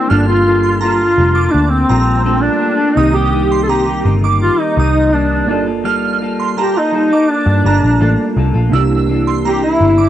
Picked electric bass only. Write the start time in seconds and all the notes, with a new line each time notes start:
0.11 G1
1.18 F1
1.54 D2
1.90 A#1
2.97 C2
4.05 G1
4.77 C2
5.48 G1
6.93 D2
7.46 G2
7.64 G1
7.83 A#1
8.01 A1
8.37 C2
8.54 A#1
8.72 C2
9.80 G1